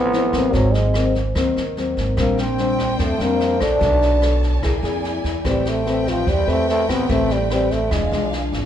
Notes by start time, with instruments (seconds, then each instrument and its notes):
Already playing: upright bass A1, nylon-string guitar A2, trombone B3
0.13 nylon-string guitar F3 C4 E4, snare
0.33 upright bass A1, nylon-string guitar F#3 A#3 C4, kick, cross-stick, snare
0.53 upright bass G#1, nylon-string guitar G#2, trombone F#3, kick, snare
0.73 trombone G#3, snare
0.94 nylon-string guitar F#3 A#3 C4, cross-stick, snare
1.15 kick, snare
1.35 upright bass D#2, nylon-string guitar D#3 F#3 A#3 C4, kick, cross-stick, snare
1.56 upright bass D#2, snare
1.77 nylon-string guitar F#3 A#3 C4, snare
1.97 upright bass G#1, kick, snare
2.16 upright bass A#1, nylon-string guitar A#2 G3 C4 D4, trombone A#3, violin section D4 C5 G5, kick, cross-stick, snare
2.38 trombone C4, snare
2.58 nylon-string guitar G3 C4 D4, snare
2.79 kick, cross-stick, snare
2.99 upright bass F2, nylon-string guitar F3, trombone A3, kick, snare
3.19 upright bass F2, nylon-string guitar G3 C4 D4, trombone A#3, snare
3.40 snare
3.60 upright bass A#1, nylon-string guitar D4 A4 C#5, trombone D4, kick, cross-stick, snare
3.80 upright bass B1, nylon-string guitar B3, violin section C#5 A5, kick, snare
4.01 snare
4.21 nylon-string guitar D4 A4 C#5, cross-stick, snare
4.42 kick, snare
4.62 upright bass A#1, nylon-string guitar A#3 E4 G#4 D5, violin section E4 D5 G#5, kick, cross-stick, snare
4.83 upright bass F2, nylon-string guitar E4 G#4 D5, snare
5.04 snare
5.24 upright bass E2, kick, snare
5.44 upright bass A1, trombone G3, nylon-string guitar A3 C4 G4 B4, violin section C4 B4 G5, kick, cross-stick, snare
5.65 trombone A3, snare
5.86 nylon-string guitar C4 G4 B4, snare
6.06 trombone F3, kick, cross-stick, snare
6.27 upright bass E2, nylon-string guitar E3, trombone G3, kick, snare
6.47 upright bass E2, trombone A3, nylon-string guitar C4 G4 B4, snare
6.69 trombone A3, snare
6.89 upright bass A1, trombone B3, nylon-string guitar C4 G4 B4, kick, cross-stick, snare
7.09 upright bass A1, nylon-string guitar A3 C4 G4 B4, trombone A3, kick, snare
7.30 trombone G3, snare
7.50 trombone G3, nylon-string guitar C4 G4 B4, cross-stick, snare
7.71 trombone A3, kick, snare
7.90 upright bass E1, nylon-string guitar E3 G#3 D4 F4, trombone G#3, violin section D4 G#4 F5, kick, cross-stick, snare
8.11 upright bass B1, nylon-string guitar G#3 D4 F4, snare
8.32 snare
8.53 upright bass G#1, kick, snare